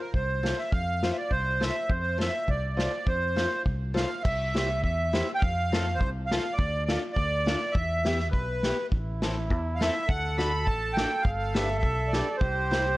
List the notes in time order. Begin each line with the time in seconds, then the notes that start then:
0.00 A#4
0.14 C2 C5, kick
0.43 F4 A4 C5, snare
0.59 E5, snare
0.72 F2 F5, kick
1.03 F4 A4 C5, snare
1.13 E5
1.18 D5
1.31 C2 C5, kick
1.60 F4 A4 C5 E5, snare
1.89 F2 C5, kick
2.18 F4 A4 C5 E5, snare
2.48 C2 D5, kick
2.77 F4 A4 C5, snare
3.07 F2 C5, kick
3.36 F4 A4 C5, snare
3.66 C2, kick
3.94 F4 A4 C5 F5, snare
4.23 C2 E5, kick, crash
4.54 E4 G4 C5, snare
4.83 E2 E5, kick
5.13 E4 G4 C5, snare
5.35 F5 G5
5.42 F2, kick
5.72 C4 F4 A4, snare
5.95 C5
6.01 C2, kick
6.26 F5
6.31 C4 F4 A4, snare
6.53 D5
6.58 D2, kick
6.85 D4 F4 A4 D5, snare
7.13 D2 D5, kick
7.46 D4 F4 A4, snare
7.72 E2 E5, kick
8.05 B3 E4 G4, snare
8.19 snare
8.31 B1 B4, kick
8.63 B3 E4 G4, snare
8.91 A1 E4, kick
9.22 C4 E4 A4, snare
9.50 E2, kick
9.75 F5
9.80 C4 E4 A4 E5, snare
10.08 D2 A4 F#5, kick
10.37 D4 F#4 A4 B5, snare
10.65 A1 A5, kick
10.93 D4 F#4 A4 G5, snare
11.22 G1 A4 F5, kick
11.54 D4 G4 B4 E5, snare
11.79 E5
11.83 B1, kick
12.08 D5
12.13 D4 G4 B4, snare
12.37 C2 G4 C5, kick
12.71 E4 G4 C5, snare